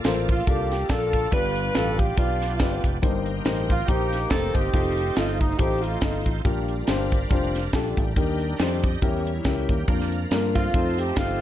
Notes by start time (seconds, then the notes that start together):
Already playing: A#2 A#3 F4 A4 D5
0.04 A1 F4 A4 A#4 C5, snare, closed hi-hat
0.28 F4, kick, closed hi-hat
0.46 C2 D4 F4 G4 A4 A#4 F5, kick, closed hi-hat
0.72 G4, snare, closed hi-hat
0.89 A#1 D4 F4 A4 A#4 D5, kick, snare, closed hi-hat
1.13 kick, closed hi-hat
1.31 G1 G2 B3 D4 F4 G4 B4 D5, kick, closed hi-hat
1.56 closed hi-hat
1.75 A1 F4 G4 A4 B4 F5, snare, closed hi-hat
1.99 G4, kick, closed hi-hat
2.17 B1 B3 D4 F4 G4 B4 D5, kick, closed hi-hat
2.42 snare, closed hi-hat
2.59 G1 F4 G4 B4 D5, kick, snare, closed hi-hat
2.84 F1, kick, closed hi-hat
3.02 G1 G2 A#3 D#4 G4 A#4 C5, kick, closed hi-hat
3.26 closed hi-hat
3.45 A1 D#4 G4 A#4 C5, snare, closed hi-hat
3.69 F4, kick, closed hi-hat
3.87 A#1 A#3 D#4 G4 A#4 C5, kick, closed hi-hat
4.13 snare, closed hi-hat
4.29 F1 D#4 G4 A4 A#4 C5, kick, snare, closed hi-hat
4.54 G1 C4 D#4 G4, kick, closed hi-hat
4.73 F1 A3 D#4 F4 A4 C5, kick, closed hi-hat
4.97 closed hi-hat
5.16 G1 D#4 F4 A4 D#5, snare, closed hi-hat
5.40 D#4, kick, closed hi-hat
5.58 A1 C4 D#4 F4 G4 A4 C5, kick, closed hi-hat
5.82 A3 C4 F4, closed hi-hat
6.01 G1 D#4 F4 A4 D#5, kick, snare, closed hi-hat
6.26 A1, kick, closed hi-hat
6.44 A#1 A#2 G3 D4 F4 G4 A#4, kick, closed hi-hat
6.68 closed hi-hat
6.87 G1 D4 F4 G4 C5, snare, closed hi-hat
7.12 kick, closed hi-hat
7.30 F1 D4 F4 G4 C5, kick, closed hi-hat
7.55 snare, closed hi-hat
7.73 A#1 D4 F4 G4 A4 D5, kick, snare, closed hi-hat
7.97 A1 A#4 G5, kick, closed hi-hat
8.16 D#2 D#3 G3 D4 D#4 G4 A#4, kick, closed hi-hat
8.40 A#4 G5, closed hi-hat
8.58 F2 D4 D#4 G4 A4 C5 F5, snare, closed hi-hat
8.83 G4 D#5, kick, closed hi-hat
9.01 E2 E3 G3 C#4 E4 G4 A#4, kick, closed hi-hat
9.27 closed hi-hat
9.45 C#2 C#4 E4 G4 A#4 E5, kick, snare, closed hi-hat
9.69 D#2 A#3 G4, kick, closed hi-hat
9.88 F2 F3 A#3 D4 F4 A#4, kick, closed hi-hat
10.00 snare
10.12 closed hi-hat
10.31 G2 A#3 D4 F4 A#4, snare, closed hi-hat
10.55 A3 C4 F4, kick, closed hi-hat
10.72 F2 F3 C4 D#4 F4 A4, kick, closed hi-hat
10.99 G4, closed hi-hat
11.16 G1 A3 C4 D#4 F4 G4, kick, snare, closed hi-hat